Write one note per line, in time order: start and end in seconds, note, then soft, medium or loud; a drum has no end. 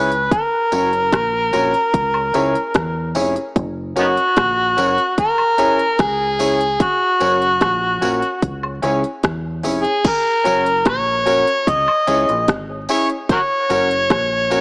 0.00 0.28 C#2 loud
0.00 0.28 B4 medium
0.12 closed hi-hat medium
0.31 3.12 A#4 medium
0.31 kick loud
0.31 closed hi-hat medium
0.72 1.10 F#1 loud
0.72 0.90 C#4 medium
0.72 0.90 F#4 medium
0.72 0.90 A#4 medium
0.72 0.90 C#5 medium
0.72 closed hi-hat medium
0.72 tambourine medium
0.93 closed hi-hat soft
1.12 1.51 A#1 loud
1.12 kick loud
1.12 cross-stick loud
1.12 closed hi-hat medium
1.12 high woodblock medium
1.53 1.73 A#1 medium
1.53 1.71 C#4 medium
1.53 1.71 F#4 medium
1.53 1.71 A#4 medium
1.53 1.71 C#5 medium
1.53 closed hi-hat medium
1.53 tambourine medium
1.74 closed hi-hat soft
1.94 2.32 C#2 medium
1.94 kick medium
1.94 closed hi-hat medium
2.14 2.23 G#4 soft
2.14 2.23 C#5 soft
2.14 high woodblock medium
2.34 2.54 C#2 medium
2.34 2.52 C#4 medium
2.34 2.52 E4 medium
2.34 2.52 G#4 medium
2.34 2.52 C#5 loud
2.34 closed hi-hat medium
2.34 tambourine soft
2.55 closed hi-hat soft
2.74 3.13 E2 medium
2.74 kick loud
2.74 cross-stick loud
2.74 closed hi-hat medium
3.15 3.35 F1 medium
3.15 3.33 C#4 medium
3.15 3.33 E4 medium
3.15 3.33 G#4 medium
3.15 3.33 C#5 medium
3.15 open hi-hat medium
3.15 tambourine medium
3.36 3.44 G#4 soft
3.36 3.44 C#5 soft
3.36 closed hi-hat medium
3.56 3.94 F#1 loud
3.56 kick loud
3.56 closed hi-hat medium
3.96 4.17 F#1 medium
3.96 4.06 B3 medium
3.96 4.14 C#4 medium
3.96 4.07 D#4 medium
3.96 4.14 F#4 medium
3.96 5.15 F#4 medium
3.96 4.14 A#4 medium
3.96 4.14 C#5 medium
3.96 closed hi-hat medium
3.96 tambourine medium
4.17 closed hi-hat soft
4.37 4.75 A#1 medium
4.37 kick loud
4.37 cross-stick loud
4.37 closed hi-hat medium
4.37 high woodblock medium
4.77 4.97 F#1 loud
4.77 4.95 C#4 medium
4.77 4.95 F#4 medium
4.77 4.95 A#4 medium
4.77 4.96 C#5 medium
4.77 closed hi-hat medium
4.77 tambourine medium
4.98 closed hi-hat soft
5.18 6.02 A#4 loud
5.18 kick medium
5.18 closed hi-hat loud
5.38 high woodblock medium
5.58 5.76 C#4 medium
5.58 5.76 E4 medium
5.58 5.77 G#4 medium
5.58 5.77 C#5 loud
5.58 closed hi-hat medium
5.58 tambourine soft
5.79 closed hi-hat medium
5.99 6.77 C#2 medium
5.99 6.84 G#4 loud
5.99 kick loud
5.99 cross-stick loud
5.99 closed hi-hat medium
6.39 6.57 C#4 medium
6.39 6.57 E4 medium
6.39 6.58 G#4 medium
6.39 6.58 C#5 loud
6.39 open hi-hat medium
6.39 tambourine medium
6.61 closed hi-hat medium
6.80 8.44 F#4 medium
6.80 kick loud
6.80 closed hi-hat medium
7.20 7.59 F#1 loud
7.20 7.38 C#4 medium
7.20 7.38 F#4 medium
7.20 7.39 A#4 medium
7.20 7.39 C#5 medium
7.20 closed hi-hat medium
7.20 tambourine medium
7.42 closed hi-hat soft
7.61 8.00 A#1 medium
7.61 kick loud
7.61 cross-stick loud
7.61 closed hi-hat medium
7.61 high woodblock medium
8.01 8.22 A#1 medium
8.01 8.19 C#4 medium
8.01 8.20 F#4 medium
8.01 8.20 A#4 medium
8.01 8.20 C#5 medium
8.01 closed hi-hat medium
8.01 tambourine medium
8.22 closed hi-hat medium
8.42 8.81 C#2 medium
8.42 kick loud
8.42 closed hi-hat medium
8.63 8.71 G#4 soft
8.63 8.71 C#5 soft
8.63 high woodblock medium
8.82 9.03 C#2 loud
8.82 9.00 C#4 medium
8.82 9.01 E4 medium
8.82 9.01 G#4 medium
8.82 9.01 C#5 loud
8.82 closed hi-hat medium
8.82 tambourine soft
9.04 closed hi-hat soft
9.23 9.62 E2 medium
9.23 kick loud
9.23 cross-stick loud
9.23 closed hi-hat medium
9.63 9.84 F1 medium
9.63 9.81 C#4 medium
9.63 9.82 E4 medium
9.63 9.82 G#4 medium
9.63 9.82 C#5 medium
9.63 open hi-hat medium
9.63 tambourine medium
9.82 10.10 G#4 medium
9.82 closed hi-hat medium
10.04 kick loud
10.04 closed hi-hat medium
10.04 crash loud
10.09 10.88 A#4 loud
10.44 10.84 F#1 medium
10.44 10.62 C#4 medium
10.44 10.63 F#4 medium
10.44 10.63 A#4 medium
10.44 10.63 C#5 medium
10.44 closed hi-hat medium
10.44 tambourine medium
10.66 closed hi-hat medium
10.85 11.44 A#1 medium
10.85 11.71 C#5 loud
10.85 kick loud
10.85 cross-stick loud
10.85 closed hi-hat medium
10.85 high woodblock medium
11.26 11.44 C#4 medium
11.26 11.44 F#4 medium
11.26 11.44 A#4 medium
11.26 11.44 C#5 loud
11.26 closed hi-hat medium
11.26 tambourine medium
11.47 closed hi-hat medium
11.67 11.87 C#2 medium
11.67 12.49 D#5 loud
11.67 kick loud
11.67 closed hi-hat medium
11.88 high woodblock medium
12.07 12.27 C#2 medium
12.07 12.25 C#4 medium
12.07 12.25 E4 medium
12.07 12.25 G#4 medium
12.07 12.25 C#5 loud
12.07 closed hi-hat medium
12.07 tambourine soft
12.29 12.47 A#1 medium
12.29 closed hi-hat medium
12.48 12.87 G#1 medium
12.48 kick loud
12.48 cross-stick loud
12.48 closed hi-hat medium
12.69 12.77 G#4 soft
12.69 12.77 C#5 soft
12.89 13.06 C#4 medium
12.89 13.07 E4 medium
12.89 13.07 G#4 medium
12.89 13.07 C#5 medium
12.89 13.07 C#5 loud
12.89 open hi-hat medium
12.89 tambourine medium
13.10 closed hi-hat medium
13.29 13.40 F#4 medium
13.29 13.38 A#4 medium
13.29 14.61 C#5 loud
13.29 kick loud
13.29 closed hi-hat medium
13.69 14.08 F#1 medium
13.69 13.87 C#4 medium
13.69 13.87 F#4 medium
13.69 13.88 A#4 medium
13.69 13.88 C#5 medium
13.69 closed hi-hat medium
13.69 tambourine medium
13.91 closed hi-hat soft
14.10 14.61 A#1 medium
14.10 kick loud
14.10 cross-stick loud
14.10 closed hi-hat medium
14.10 high woodblock medium
14.50 14.61 C#4 medium
14.50 14.61 F#4 medium
14.50 14.61 A#4 medium
14.50 14.61 C#5 loud
14.50 closed hi-hat medium
14.50 tambourine medium